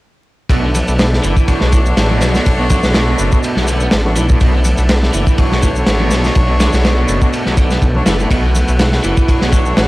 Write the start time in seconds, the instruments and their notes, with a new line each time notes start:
0.50 detuned saw bass B1, overdriven electric guitar B2, tonewheel organ A3 B3 D4, kick, ride, shaker
0.64 overdriven electric guitar D3
0.75 ride, high conga, low conga, shaker
0.88 detuned saw bass B1, ride, shaker
0.99 snare, ride, shaker
1.13 snare
1.24 detuned saw bass F#1, overdriven electric guitar E3, ride, shaker
1.37 kick, shaker
1.48 detuned saw bass B1, horn section D4 F#4 A4 C#5, kick, ride, shaker
1.61 detuned saw bass B1, overdriven electric guitar B2, snare
1.72 overdriven electric guitar E3, kick, ride, high conga, shaker
1.86 shaker
1.97 detuned saw bass A1, snare, ride, shaker
2.10 overdriven electric guitar B2, low conga
2.21 detuned saw bass B1, snare, ride, low conga, shaker
2.34 overdriven electric guitar B2, snare, shaker
2.46 detuned saw bass B1, kick, ride, shaker
2.59 overdriven electric guitar B2
2.70 overdriven electric guitar D3, kick, ride, high conga, low conga, shaker
2.83 detuned saw bass B1, snare, shaker
2.94 overdriven electric guitar B2, snare, ride, shaker
3.08 overdriven electric guitar B2
3.19 detuned saw bass F#1, ride, shaker
3.32 horn section D4 F#4 A4 C#5, kick, shaker
3.43 ride, shaker
3.56 detuned saw bass B1, overdriven electric guitar F#3, snare, high conga
3.67 overdriven electric guitar D3, ride, shaker
3.80 overdriven electric guitar B3, shaker
3.91 detuned saw bass A1, snare, ride, shaker
4.05 horn section D4 F#4 A4 C#5, high conga, low conga
4.16 detuned saw bass B1, overdriven electric guitar E3, ride, low conga, shaker
4.29 overdriven electric guitar A2, kick, shaker
4.40 detuned saw bass B1, overdriven electric guitar B2, kick, ride, shaker
4.54 overdriven electric guitar D3
4.64 ride, high conga, low conga, shaker
4.78 detuned saw bass B1, ride, shaker
4.89 snare, ride, shaker
5.03 snare
5.13 detuned saw bass F#1, overdriven electric guitar E3, ride, shaker
5.27 kick, shaker
5.38 detuned saw bass B1, horn section D4 F#4 A4 C#5, kick, ride, shaker
5.52 detuned saw bass B1, overdriven electric guitar B2, snare
5.62 overdriven electric guitar E3, kick, ride, high conga, shaker
5.76 shaker
5.87 detuned saw bass A1, snare, ride, shaker
6.00 overdriven electric guitar B2, low conga
6.11 detuned saw bass B1, snare, ride, low conga, shaker
6.24 overdriven electric guitar B2, snare, shaker
6.35 detuned saw bass B1, kick, ride, shaker
6.49 overdriven electric guitar B2
6.60 overdriven electric guitar D3, snare, ride, high conga, low conga, shaker
6.73 detuned saw bass B1, snare, shaker
6.84 overdriven electric guitar B2, snare, ride, shaker
6.98 overdriven electric guitar B2
7.08 detuned saw bass F#1, ride, shaker
7.22 horn section D4 F#4 A4 C#5, kick, shaker
7.33 ride, shaker
7.45 detuned saw bass B1, overdriven electric guitar F#3, snare, high conga
7.57 overdriven electric guitar D3, kick, ride, shaker
7.70 overdriven electric guitar B3, snare, shaker
7.82 detuned saw bass B1, kick, ride, shaker
7.95 horn section D4 F#4 A4 C#5, high conga, low conga
8.06 detuned saw bass F#1, overdriven electric guitar E3, snare, ride, low conga, shaker
8.20 overdriven electric guitar A2, shaker
8.31 detuned saw bass B1, overdriven electric guitar B2, tonewheel organ F#4, kick, ride, shaker
8.44 overdriven electric guitar D3
8.55 ride, high conga, low conga, shaker
8.68 detuned saw bass B1, ride, shaker
8.79 snare, ride, shaker
8.92 snare
9.04 detuned saw bass F#1, overdriven electric guitar E3, ride, shaker
9.17 kick, shaker
9.28 detuned saw bass B1, horn section D4 F#4 A4 C#5, kick, ride, shaker
9.41 detuned saw bass B1, overdriven electric guitar B2, snare
9.53 overdriven electric guitar E3, kick, ride, high conga, shaker
9.66 shaker
9.77 detuned saw bass A1, snare, ride, shaker